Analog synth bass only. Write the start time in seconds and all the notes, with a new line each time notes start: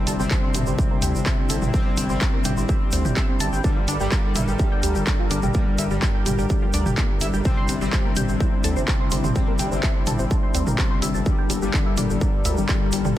0.07 G1
0.19 G1
0.54 G1
0.67 G1
1.02 D2
1.14 G1
1.50 G1
1.62 G1
1.98 G1
2.10 G1
2.45 G1
2.57 G1
2.93 D2
3.05 G1
3.40 G1
3.53 G1
3.88 G1
4.00 G1
4.36 G1
4.48 G1
4.83 D2
4.95 G1
5.31 G1
5.43 G1
5.78 G1
5.91 G1
6.26 G1
6.38 G1
6.74 D2
6.86 G1
7.21 G1
7.34 G1
7.69 G1
7.81 G1
8.17 G1
8.29 G1
8.64 D2
8.76 G1
9.12 G1
9.24 G1
9.59 G1
9.72 G1
10.07 G1
10.19 G1
10.55 D2
10.67 G1
11.02 G1
11.15 G1
11.50 G1
11.62 G1
11.97 G1
12.10 G1
12.45 D2
12.57 G1
12.93 G1
13.05 G1